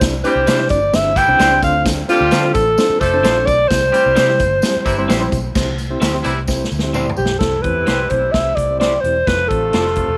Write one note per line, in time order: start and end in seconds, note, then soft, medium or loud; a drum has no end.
0.01 0.21 C2 loud
0.01 0.13 C4 medium
0.01 0.13 D4 medium
0.01 0.13 E4 medium
0.01 0.13 G4 medium
0.01 0.13 C5 medium
0.01 kick loud
0.01 snare loud
0.01 closed hi-hat medium
0.01 tambourine loud
0.24 0.68 E3 loud
0.24 0.68 G3 medium
0.24 0.43 C4 medium
0.24 0.68 D4 medium
0.24 0.43 D4 medium
0.24 0.42 E4 medium
0.24 0.43 G4 medium
0.24 0.68 G4 loud
0.24 0.67 C5 medium
0.24 0.43 C5 medium
0.24 closed hi-hat medium
0.24 tambourine medium
0.35 0.46 C2 loud
0.47 0.67 C3 loud
0.47 0.59 G3 medium
0.47 0.59 D4 medium
0.47 0.59 E4 loud
0.47 0.60 C5 medium
0.47 snare loud
0.47 closed hi-hat loud
0.47 tambourine loud
0.60 0.77 C4 medium
0.60 0.78 D4 medium
0.60 0.78 E4 medium
0.60 0.78 G4 medium
0.60 0.78 C5 medium
0.60 snare soft
0.69 0.90 G1 medium
0.69 0.97 D5 medium
0.69 kick loud
0.69 closed hi-hat medium
0.69 tambourine medium
0.93 1.23 G1 loud
0.93 1.12 C4 medium
0.93 1.11 D4 medium
0.93 1.12 E4 medium
0.93 1.12 G4 medium
0.93 1.12 C5 medium
0.93 1.19 E5 loud
0.93 snare loud
0.93 closed hi-hat medium
0.93 tambourine loud
1.16 1.60 C3 medium
1.16 1.60 E3 medium
1.16 1.60 G3 medium
1.16 1.60 E4 loud
1.16 1.63 G5 loud
1.16 kick medium
1.16 closed hi-hat medium
1.16 tambourine medium
1.28 1.38 C2 medium
1.28 1.41 C4 medium
1.28 1.41 D4 medium
1.28 1.41 E4 medium
1.28 1.41 G4 medium
1.28 1.41 C5 medium
1.39 1.59 C#2 medium
1.39 1.51 G3 medium
1.39 1.51 D4 medium
1.39 1.51 E4 medium
1.39 1.51 C5 medium
1.39 snare loud
1.39 closed hi-hat medium
1.39 tambourine medium
1.51 1.61 C4 medium
1.51 1.62 D4 medium
1.51 1.63 E4 medium
1.51 1.63 G4 medium
1.51 1.61 C5 medium
1.62 2.02 D2 medium
1.62 1.99 C4 medium
1.62 2.00 D4 medium
1.62 2.00 F4 medium
1.62 2.00 A4 medium
1.62 2.00 C5 medium
1.62 1.85 F5 medium
1.62 kick medium
1.62 closed hi-hat medium
1.62 tambourine medium
1.86 kick loud
1.86 snare loud
1.86 closed hi-hat medium
1.86 tambourine medium
2.08 2.53 D3 loud
2.08 2.53 G3 loud
2.08 2.27 C4 medium
2.08 2.53 C4 loud
2.08 2.27 D4 medium
2.08 2.27 F4 medium
2.08 2.52 F4 medium
2.08 2.53 G4 loud
2.08 2.27 A4 medium
2.08 2.27 C5 medium
2.08 closed hi-hat medium
2.08 tambourine medium
2.21 2.30 D2 medium
2.31 2.52 D3 medium
2.31 2.43 C4 medium
2.31 2.43 F4 loud
2.31 2.44 A4 loud
2.31 2.44 C5 loud
2.31 snare loud
2.31 closed hi-hat medium
2.31 tambourine loud
2.44 2.62 C4 medium
2.44 2.62 D4 medium
2.44 2.62 F4 medium
2.44 2.62 A4 medium
2.44 2.62 C5 medium
2.54 2.75 A1 medium
2.54 3.02 A4 loud
2.54 kick medium
2.54 closed hi-hat medium
2.54 tambourine medium
2.78 2.97 C4 medium
2.78 2.97 D4 medium
2.78 2.97 F4 medium
2.78 2.97 A4 medium
2.78 2.97 C5 medium
2.78 snare loud
2.78 closed hi-hat medium
2.78 tambourine medium
2.90 muted fingered electric bass stroke medium
3.00 3.24 F1 medium
3.00 3.45 F3 medium
3.00 3.44 A3 loud
3.00 3.44 D4 medium
3.00 3.44 A4 loud
3.00 3.48 C5 loud
3.00 kick medium
3.00 closed hi-hat medium
3.00 tambourine medium
3.14 3.25 C4 medium
3.14 3.25 D4 medium
3.14 3.26 F4 medium
3.14 3.26 A4 medium
3.14 3.25 C5 medium
3.23 3.44 A#1 loud
3.23 3.35 C4 medium
3.23 3.35 F4 medium
3.23 3.36 A4 medium
3.23 3.36 C5 medium
3.23 snare loud
3.23 closed hi-hat medium
3.23 tambourine medium
3.37 3.55 C4 medium
3.37 3.55 D4 medium
3.37 3.55 F4 medium
3.37 3.55 A4 medium
3.37 3.55 C5 medium
3.46 3.67 B1 medium
3.46 3.70 D5 loud
3.46 kick medium
3.46 closed hi-hat medium
3.46 tambourine medium
3.68 3.90 C2 loud
3.68 3.83 G3 medium
3.68 3.83 C4 medium
3.68 3.83 E4 medium
3.68 3.83 G4 medium
3.68 5.31 C5 loud
3.68 3.83 C5 medium
3.68 kick loud
3.68 snare loud
3.68 closed hi-hat medium
3.68 tambourine medium
3.91 4.36 E3 loud
3.91 4.36 G3 medium
3.91 4.12 G3 medium
3.91 4.36 C4 medium
3.91 4.12 C4 medium
3.91 4.12 E4 medium
3.91 4.36 G4 loud
3.91 4.12 G4 medium
3.91 4.12 C5 medium
3.91 closed hi-hat medium
3.91 tambourine medium
4.06 4.16 C2 loud
4.15 4.41 C3 loud
4.15 4.27 C4 medium
4.15 4.28 E4 medium
4.15 4.28 G4 medium
4.15 4.28 C5 loud
4.15 snare loud
4.15 closed hi-hat medium
4.15 tambourine loud
4.29 4.47 G3 loud
4.29 4.47 C4 medium
4.29 4.47 E4 medium
4.29 4.47 G4 medium
4.29 4.47 C5 loud
4.29 snare soft
4.39 4.60 G1 medium
4.39 kick medium
4.39 closed hi-hat medium
4.39 tambourine medium
4.62 4.81 G3 medium
4.62 4.81 C4 medium
4.62 4.81 E4 medium
4.62 4.81 G4 medium
4.62 4.81 C5 loud
4.62 snare loud
4.62 closed hi-hat medium
4.62 tambourine loud
4.76 muted fingered electric bass stroke soft
4.85 5.05 G1 medium
4.85 5.29 C3 medium
4.85 5.29 E3 medium
4.85 5.29 G3 medium
4.85 5.29 E4 loud
4.85 kick medium
4.85 closed hi-hat medium
4.85 tambourine medium
4.98 5.10 G3 medium
4.98 5.10 C4 medium
4.98 5.10 E4 medium
4.98 5.10 G4 medium
4.98 5.10 C5 loud
5.08 5.29 A#1 loud
5.08 5.20 C4 medium
5.08 5.20 E4 medium
5.08 5.20 G4 medium
5.08 5.21 C5 medium
5.08 snare loud
5.08 closed hi-hat medium
5.08 tambourine medium
5.20 5.39 G3 medium
5.20 5.39 C4 medium
5.20 5.39 E4 medium
5.20 5.39 G4 medium
5.20 5.39 C5 loud
5.32 5.52 B1 medium
5.32 kick loud
5.32 closed hi-hat medium
5.32 tambourine medium
5.55 5.95 C2 medium
5.55 5.74 C4 medium
5.55 5.74 E4 medium
5.55 5.74 G4 medium
5.55 5.74 C5 medium
5.55 kick loud
5.55 snare loud
5.55 crash medium
5.55 tambourine medium
5.78 closed hi-hat medium
5.78 tambourine medium
5.90 6.02 C4 medium
5.90 6.02 E4 medium
5.90 6.02 G4 medium
5.90 6.02 C5 medium
6.00 6.21 D2 medium
6.00 6.12 C4 medium
6.00 6.13 E4 loud
6.00 6.13 G4 medium
6.00 6.13 C5 medium
6.00 snare loud
6.00 closed hi-hat medium
6.00 tambourine medium
6.14 6.32 C4 loud
6.14 6.32 E4 medium
6.14 6.32 G4 medium
6.14 6.32 C5 loud
6.14 snare soft
6.23 6.65 C2 medium
6.23 6.39 C3 loud
6.23 6.38 E3 loud
6.23 6.39 G3 medium
6.23 6.38 E4 loud
6.23 closed hi-hat medium
6.23 tambourine medium
6.47 6.66 C4 medium
6.47 6.66 E4 medium
6.47 6.67 G4 medium
6.47 6.66 C5 medium
6.47 kick medium
6.47 snare medium
6.47 tambourine loud
6.64 snare medium
6.71 7.11 D2 medium
6.71 tambourine medium
6.79 6.94 C5 medium
6.79 snare medium
6.83 6.95 C4 medium
6.83 6.95 E4 medium
6.83 6.95 G4 medium
6.94 7.05 C4 medium
6.94 7.06 E4 medium
6.94 7.06 G4 medium
6.94 7.06 C5 medium
6.94 7.17 D5 medium
6.94 mid tom medium
6.94 tambourine medium
7.09 floor tom medium
7.17 7.38 B1 medium
7.17 7.38 G4 medium
7.17 7.40 C5 medium
7.17 tambourine medium
7.26 snare medium
7.39 7.60 C2 medium
7.39 9.00 C3 medium
7.39 9.00 E3 medium
7.39 9.00 G3 medium
7.39 7.53 C4 medium
7.39 9.00 E4 medium
7.39 7.53 E4 medium
7.39 7.53 G4 medium
7.39 7.63 A4 medium
7.39 7.53 C5 medium
7.39 kick medium
7.39 snare loud
7.39 closed hi-hat medium
7.62 7.84 E2 medium
7.62 7.89 C4 medium
7.62 7.89 E4 medium
7.62 7.89 G4 medium
7.62 8.11 B4 medium
7.62 7.89 C5 medium
7.62 kick medium
7.62 closed hi-hat medium
7.86 8.07 C2 medium
7.86 7.98 C4 medium
7.86 7.99 E4 medium
7.86 7.99 G4 medium
7.86 7.99 C5 medium
7.86 snare medium
7.86 closed hi-hat medium
8.10 8.30 B1 medium
8.10 8.23 C4 medium
8.10 8.24 E4 medium
8.10 8.23 G4 medium
8.10 8.34 C5 medium
8.10 8.24 C5 medium
8.10 kick medium
8.10 closed hi-hat medium
8.32 8.54 C2 medium
8.32 8.53 C4 medium
8.32 8.53 E4 medium
8.32 8.53 G4 medium
8.32 8.53 C5 medium
8.32 8.57 E5 loud
8.32 kick medium
8.32 snare loud
8.32 closed hi-hat medium
8.55 8.97 C2 medium
8.55 8.79 D5 medium
8.55 kick medium
8.55 closed hi-hat medium
8.70 8.88 C4 medium
8.70 8.88 E4 medium
8.70 8.88 G4 medium
8.70 8.88 C5 medium
8.80 8.92 C4 medium
8.80 8.92 E4 medium
8.80 8.92 G4 medium
8.80 8.92 C5 medium
8.80 9.02 D5 medium
8.80 snare medium
8.80 closed hi-hat medium
9.01 9.23 E1 medium
9.01 9.28 C5 medium
9.01 closed hi-hat medium
9.05 9.16 C4 medium
9.05 9.17 E4 medium
9.05 9.17 G4 medium
9.05 9.17 C5 medium
9.27 9.47 F1 medium
9.27 10.18 C3 medium
9.27 10.18 F3 medium
9.27 10.18 A3 medium
9.27 9.39 C4 medium
9.27 10.18 F4 medium
9.27 9.40 F4 medium
9.27 9.40 A4 medium
9.27 9.50 B4 medium
9.27 9.39 C5 medium
9.27 kick medium
9.27 snare loud
9.27 closed hi-hat medium
9.48 9.70 A1 medium
9.48 9.75 C4 medium
9.48 9.74 F4 medium
9.48 10.18 A4 medium
9.48 9.74 A4 medium
9.48 9.75 C5 medium
9.48 kick medium
9.48 closed hi-hat medium
9.73 10.03 F1 medium
9.73 9.85 C4 medium
9.73 9.85 F4 medium
9.73 9.85 A4 medium
9.73 9.86 C5 medium
9.73 snare loud
9.73 closed hi-hat medium
9.86 snare soft
9.96 10.09 C4 medium
9.96 10.09 F4 medium
9.96 10.09 A4 medium
9.96 10.09 C5 medium
9.96 kick medium
9.96 closed hi-hat medium
10.08 10.18 E1 medium